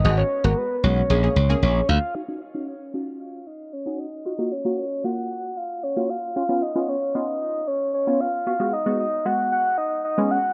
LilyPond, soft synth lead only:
\new Staff \with { instrumentName = "Soft synth lead" } { \time 4/4 \key ees \minor \tempo 4 = 114 ees''16 des''8 bes'16 ces''8 des''4. des''8 f''8 | f''8 ees''8 des''8 f''8 f''8 ees''8 des''8 ees''8 | ees''8 des''8 des''8 ges''8 ges''8 f''8 des''8 f''8 | f''8 ees''8 des''8 ees''8 ees''8 des''8 des''8 f''8 |
f''8 ees''8 ees''8 ges''8 ges''8 ees''8 ees''8 ges''8 | }